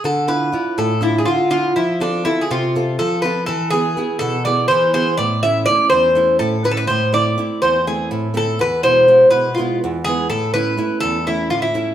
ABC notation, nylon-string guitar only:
X:1
M:7/8
L:1/8
Q:1/4=123
K:none
V:1 name="Nylon-string guitar"
D, [DEF] [DEF] A,, [DEF] D, [DEF] | F, [CFA] [CFA] C, [CFA] F, [CFA] | E, [B,E^G] [B,EG] B,, [B,EG] E, [B,EG] | A,, [A,^CE] [A,CE] E,, [A,CE] A,, [A,CE] |
A,, [A,CE] [A,CE] E,, [A,CE] A,, [A,CE] | E,, [B,,^G,E] [G,B,E] B,, [G,B,E] E,, [G,B,E] | A,, [A,^CE] [A,CE] E,, [A,CE] A,, [A,CE] |]